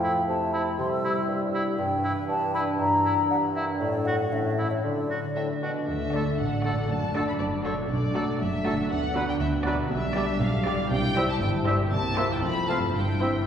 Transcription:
Already playing: harp F2 C4, bassoon F3, french horn section A3 E4, flute G5
0.03 oboe E4, harp A4
0.28 bassoon C3, harp C4, flute A5
0.53 oboe E4, harp A4, flute B5
0.78 bassoon C3, harp C3, french horn section G3 E4, flute C6
0.92 flute E6
1.04 oboe E4, harp G4
1.28 bassoon G2, harp C4
1.53 oboe E4, harp G4
1.78 bassoon G2, harp G2, french horn section E3 D4, flute G5
2.04 oboe E4, harp B4
2.28 bassoon G2, harp D4, flute A5
2.54 oboe E4, harp B4, flute B5
2.79 bassoon G2, harp G2, flute A#5
3.05 oboe E4, harp A#4
3.30 bassoon G2, harp D4, flute F#5
3.55 oboe E4, harp A#4, flute E5
3.80 bassoon A2, harp A2, french horn section F#3 D4, flute D5
4.05 harp F#4 A4, oboe F#4, flute F#5
4.31 harp A2, bassoon A2, french horn section E3 C#4, flute E5
4.57 harp E4 A4, oboe E4
4.71 flute C#5
4.83 bassoon D3, harp D3, french horn section F#3 D4, flute D5
5.09 oboe F#4, harp A4
5.36 bassoon A2, harp D4, violin section E5
5.62 bassoon B2, oboe F#4, harp A4, violin section D5
5.69 harp D3
5.74 harp D4
5.78 harp F#4
5.83 harp A4
5.87 cello section D2, double bass section D2, french horn section A3 D4, violin section E5
6.13 bassoon D3, viola section A3 D4, violin section F#4 D5, oboe A4
6.38 double bass section A1, cello section A2, violin section F#5
6.64 bassoon D3, viola section A3 D4, violin section F#4 D5, oboe A4
6.71 harp F#2
6.76 harp D4
6.80 harp F#4
6.85 cello section F#2, harp A4
6.89 double bass section F#1, violin section A5
7.14 bassoon D3, viola section A3 D4, violin section F#4 D5, oboe A4
7.27 violin section B5
7.39 double bass section F#1, cello section F#2, violin section D5
7.65 bassoon D3, viola section A3 D4, violin section F#4 C#5 D5, oboe A4
7.72 harp B2
7.76 harp D4
7.81 harp F#4
7.86 cello section B2, harp A4
7.90 double bass section B1, french horn section A3 D4, violin section D5
8.15 bassoon F#3, viola section A3 D4, violin section F#4 D5, oboe A4
8.40 double bass section F#1, cello section F#2, violin section E5
8.65 bassoon F#3, viola section A3 D4, violin section F#4 D5, oboe A4
8.72 harp D3
8.77 harp D4
8.81 harp F#4
8.86 harp B4
8.90 double bass section D2, cello section D3, french horn section B3, violin section F#5
9.15 bassoon F#3, viola section B3 D4, violin section F#4 D5, oboe B4
9.29 violin section G5
9.41 double bass section D2, cello section D3, violin section E5
9.65 bassoon F#3, viola section B3 D4, violin section F#4 D5, oboe B4
9.73 harp B2
9.77 harp D4
9.82 harp G4
9.86 harp D5
9.91 double bass section B1, cello section B2, french horn section G3 D4, violin section E5
10.15 bassoon G3, viola section G3 D4, violin section G4 D5, oboe D5
10.41 double bass section B1, cello section B2, violin section F5
10.65 bassoon G3, viola section G3 D4, violin section G4 D5, oboe D5
10.73 harp C3
10.77 harp E4
10.82 harp G4
10.86 harp C5
10.90 double bass section C2, cello section C3, french horn section E4, violin section G5
11.15 bassoon G3, viola section G3 E4, violin section G4 C5, oboe E5
11.29 violin section A5
11.41 double bass section G1, cello section G2, violin section G5
11.66 viola section G3 E4, bassoon G3, violin section G4 C5, oboe E5
11.74 harp C3
11.78 harp E4
11.83 harp G4
11.87 french horn section A#3, harp A#4
11.91 double bass section C2, cello section C3, french horn section E4, violin section A5
12.17 viola section A#3 E4, bassoon A#3, violin section G4 C5, oboe E5
12.25 harp F2
12.30 harp C4, violin section G5
12.34 harp F4
12.39 cello section F2, french horn section C4 F4, harp A4
12.43 double bass section F1, violin section B5
12.68 viola section A3 C4, bassoon C4, violin section F4 C5 A5, oboe F5
12.77 harp G2
12.81 harp C4
12.86 harp E4
12.90 french horn section C4 E4, harp C5
12.95 double bass section G1, cello section G2, violin section G5
13.21 viola section E3 C4, bassoon C4, violin section E4 C5, oboe E5
13.29 harp G2
13.34 harp B3
13.38 harp D4
13.43 harp D5

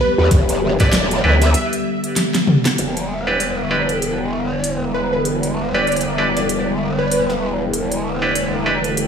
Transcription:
Already playing: ambient pad D3 G3 B3 G4
0.01 digital synth lead B4
0.18 wobble bass E2, digital synth lead B4
0.31 wobble bass E1, kick, snare, closed hi-hat
0.49 closed hi-hat
0.80 wobble bass E1, clav D4 E4 G4 B4, digital synth lead D5, kick, snare, closed hi-hat
0.93 snare, closed hi-hat
1.11 closed hi-hat
1.24 wobble bass D2, clav D4 E4 G4 B4
1.42 digital synth lead E5, snare, closed hi-hat
1.54 digital synth lead E5, closed hi-hat
1.73 closed hi-hat
2.04 closed hi-hat
2.16 snare, closed hi-hat
2.35 snare, closed hi-hat
2.47 mid tom
2.65 snare, closed hi-hat
2.78 wobble bass E1, ambient pad D3 G3 B3 E4, closed hi-hat
2.97 closed hi-hat
3.27 clav D4 E4 G4 B4
3.40 closed hi-hat
3.71 clav D4 E4 G4 B4
3.89 closed hi-hat
4.02 closed hi-hat
4.64 closed hi-hat
4.94 digital synth lead B4
5.13 digital synth lead B4
5.25 closed hi-hat
5.43 closed hi-hat
5.74 clav D4 E4 G4 B4, digital synth lead D5
5.87 closed hi-hat
5.92 closed hi-hat
5.97 closed hi-hat
6.01 closed hi-hat
6.18 clav D4 E4 G4 B4, digital synth lead D5
6.36 digital synth lead D5, snare, closed hi-hat
6.49 closed hi-hat
6.99 digital synth lead B4
7.11 digital synth lead B4, closed hi-hat
7.30 snare
7.74 ambient pad A3, closed hi-hat
7.92 closed hi-hat
8.22 clav D4 E4 G4 B4
8.35 closed hi-hat
8.66 clav D4 E4 G4 B4
8.84 closed hi-hat
8.97 closed hi-hat

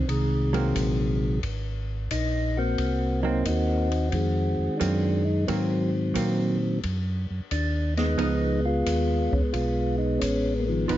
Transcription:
0.08 tonewheel organ C2 C3 D#3 G#3, kick, ride
0.53 hollow-body jazz guitar F#3 A#3 C4, ride
0.75 tonewheel organ A#1, kick, hi-hat pedal, ride
1.43 tonewheel organ G#1, kick, ride
2.11 tonewheel organ A#1 D#4, kick, hi-hat pedal, ride
2.57 tonewheel organ A#3 C4 F#4
2.78 tonewheel organ C2, kick, ride
3.22 hollow-body jazz guitar F#3 A#3 C4, tonewheel organ D#4
3.45 tonewheel organ D#2 C4 D#4 F#4, kick, hi-hat pedal, ride
3.92 ride
4.11 tonewheel organ F2 D#3 G#3 C4, kick, ride
4.58 tonewheel organ F2
4.77 tonewheel organ F#2 D4, hollow-body jazz guitar F#3 A#3 C4, kick, hi-hat pedal, ride
5.25 tonewheel organ D#4
5.47 tonewheel organ G#2 D#3 F#3 C4, hollow-body jazz guitar F#3 A#3 C4, kick, ride
6.14 tonewheel organ A#2, hollow-body jazz guitar F#3 A#3 C4, kick, hi-hat pedal, ride
6.83 tonewheel organ F#2, kick, ride
7.30 tonewheel organ F#2
7.51 tonewheel organ D#2 D4, kick, hi-hat pedal, ride
7.97 tonewheel organ G#3 B3 D#4, snare, ride
8.18 tonewheel organ C#2, hollow-body jazz guitar F3 B3 D#4, kick, ride
8.65 tonewheel organ G#3 B3 F4
8.86 tonewheel organ D#2, kick, hi-hat pedal, ride
9.32 tonewheel organ D#2 C#4, kick
9.53 tonewheel organ B1 G#3 B3 F4, kick, ride
9.98 tonewheel organ D#4
10.19 tonewheel organ A1 C#4, kick, hi-hat pedal, ride
10.60 tonewheel organ A#3
10.67 tonewheel organ D#3 F3 B3
10.88 tonewheel organ G#1, hollow-body jazz guitar F3 B3 D#4, kick, ride

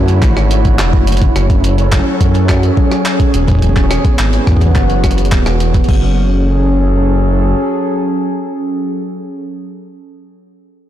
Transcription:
Already playing: detuned saw bass F#2, ambient pad D3 A3 E4 F#4, synth texture C#5
0.08 closed hi-hat
0.22 detuned saw bass G#1, kick, clap, closed hi-hat
0.37 cross-stick
0.51 closed hi-hat
0.65 kick, closed hi-hat
0.79 detuned saw bass E1, cross-stick, clap, closed hi-hat
0.93 detuned saw bass F#1, kick
1.07 closed hi-hat
1.12 closed hi-hat
1.17 closed hi-hat
1.22 kick, closed hi-hat
1.36 detuned saw bass F#1, ambient pad F#3, cross-stick, closed hi-hat
1.45 ambient pad C#4
1.49 ambient pad A4, kick, closed hi-hat
1.64 closed hi-hat
1.78 closed hi-hat
1.92 kick, cross-stick, clap, closed hi-hat
2.04 ambient pad G#4
2.21 detuned saw bass F#2, kick, closed hi-hat
2.35 closed hi-hat
2.49 kick, cross-stick, clap, closed hi-hat
2.63 closed hi-hat
2.77 kick
2.92 cross-stick, closed hi-hat
3.06 clap, closed hi-hat
3.20 kick, closed hi-hat
3.34 detuned saw bass E1, closed hi-hat
3.48 kick, closed hi-hat
3.52 kick
3.55 kick
3.59 ambient pad E3, kick
3.62 kick, closed hi-hat
3.66 kick
3.69 kick
3.73 kick
3.76 ambient pad B3, kick, clap, closed hi-hat
3.91 cross-stick, closed hi-hat
4.05 kick, closed hi-hat
4.15 ambient pad F#4
4.19 detuned saw bass G#1, clap, closed hi-hat
4.33 closed hi-hat
4.47 detuned saw bass E2, kick, cross-stick
4.52 kick
4.57 kick
4.61 kick, closed hi-hat
4.66 kick
4.71 kick
4.75 detuned saw bass F#1, kick, clap, closed hi-hat
4.90 closed hi-hat
5.04 kick, cross-stick, closed hi-hat
5.11 closed hi-hat
5.18 closed hi-hat
5.25 closed hi-hat
5.32 detuned saw bass D1, kick, clap, closed hi-hat
5.46 detuned saw bass E1, cross-stick, closed hi-hat
5.60 closed hi-hat
5.74 kick, closed hi-hat
5.84 closed hi-hat
5.89 detuned saw bass F#1, ambient pad F#3, kick, crash
5.93 ambient pad C#4, closed hi-hat
6.06 ambient pad G#4
6.14 ambient pad A4

